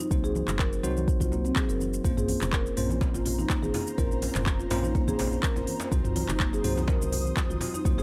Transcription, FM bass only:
0, 0, Header, 1, 2, 480
1, 0, Start_track
1, 0, Key_signature, -5, "minor"
1, 0, Tempo, 483871
1, 109, Time_signature, 4, 2, 24, 8
1, 7964, End_track
2, 0, Start_track
2, 0, Title_t, "FM bass"
2, 0, Program_c, 0, 39
2, 109, Note_on_c, 0, 36, 99
2, 424, Note_off_c, 0, 36, 0
2, 477, Note_on_c, 0, 30, 105
2, 782, Note_off_c, 0, 30, 0
2, 831, Note_on_c, 0, 36, 87
2, 1145, Note_off_c, 0, 36, 0
2, 1198, Note_on_c, 0, 36, 88
2, 1503, Note_off_c, 0, 36, 0
2, 1678, Note_on_c, 0, 30, 86
2, 1983, Note_off_c, 0, 30, 0
2, 2029, Note_on_c, 0, 34, 99
2, 2344, Note_off_c, 0, 34, 0
2, 2399, Note_on_c, 0, 29, 108
2, 2703, Note_off_c, 0, 29, 0
2, 2751, Note_on_c, 0, 34, 92
2, 3065, Note_off_c, 0, 34, 0
2, 3116, Note_on_c, 0, 34, 88
2, 3422, Note_off_c, 0, 34, 0
2, 3597, Note_on_c, 0, 34, 81
2, 3680, Note_off_c, 0, 34, 0
2, 3950, Note_on_c, 0, 34, 100
2, 4265, Note_off_c, 0, 34, 0
2, 4318, Note_on_c, 0, 29, 105
2, 4623, Note_off_c, 0, 29, 0
2, 4670, Note_on_c, 0, 34, 93
2, 4985, Note_off_c, 0, 34, 0
2, 5039, Note_on_c, 0, 34, 89
2, 5343, Note_off_c, 0, 34, 0
2, 5521, Note_on_c, 0, 34, 83
2, 5602, Note_off_c, 0, 34, 0
2, 5870, Note_on_c, 0, 36, 97
2, 6185, Note_off_c, 0, 36, 0
2, 6239, Note_on_c, 0, 30, 105
2, 6544, Note_off_c, 0, 30, 0
2, 6590, Note_on_c, 0, 36, 90
2, 6905, Note_off_c, 0, 36, 0
2, 6959, Note_on_c, 0, 36, 88
2, 7263, Note_off_c, 0, 36, 0
2, 7438, Note_on_c, 0, 36, 85
2, 7520, Note_off_c, 0, 36, 0
2, 7790, Note_on_c, 0, 36, 100
2, 7964, Note_off_c, 0, 36, 0
2, 7964, End_track
0, 0, End_of_file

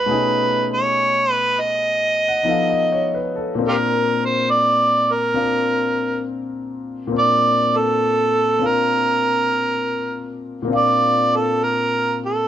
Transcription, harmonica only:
0, 0, Header, 1, 2, 480
1, 0, Start_track
1, 0, Key_signature, -2, "major"
1, 0, Tempo, 879765
1, 45, Time_signature, 4, 2, 24, 8
1, 3885, Tempo, 887574
1, 6782, End_track
2, 0, Start_track
2, 0, Title_t, "Harmonica"
2, 0, Program_c, 0, 22
2, 0, Note_on_c, 0, 71, 81
2, 369, Note_off_c, 0, 71, 0
2, 404, Note_on_c, 0, 73, 93
2, 720, Note_off_c, 0, 73, 0
2, 720, Note_on_c, 0, 71, 93
2, 875, Note_on_c, 0, 75, 93
2, 883, Note_off_c, 0, 71, 0
2, 1821, Note_off_c, 0, 75, 0
2, 2008, Note_on_c, 0, 65, 52
2, 2008, Note_on_c, 0, 67, 52
2, 2008, Note_on_c, 0, 70, 75
2, 2045, Note_off_c, 0, 65, 0
2, 2055, Note_off_c, 0, 67, 0
2, 2320, Note_on_c, 0, 72, 84
2, 2329, Note_off_c, 0, 70, 0
2, 2455, Note_on_c, 0, 74, 91
2, 2463, Note_off_c, 0, 72, 0
2, 2796, Note_on_c, 0, 70, 76
2, 2805, Note_off_c, 0, 74, 0
2, 3414, Note_off_c, 0, 70, 0
2, 3922, Note_on_c, 0, 74, 95
2, 4235, Note_on_c, 0, 69, 93
2, 4243, Note_off_c, 0, 74, 0
2, 4723, Note_on_c, 0, 70, 80
2, 4731, Note_off_c, 0, 69, 0
2, 5669, Note_off_c, 0, 70, 0
2, 5852, Note_on_c, 0, 74, 81
2, 6178, Note_on_c, 0, 69, 73
2, 6186, Note_off_c, 0, 74, 0
2, 6325, Note_on_c, 0, 70, 73
2, 6334, Note_off_c, 0, 69, 0
2, 6633, Note_off_c, 0, 70, 0
2, 6664, Note_on_c, 0, 69, 78
2, 6782, Note_off_c, 0, 69, 0
2, 6782, End_track
0, 0, End_of_file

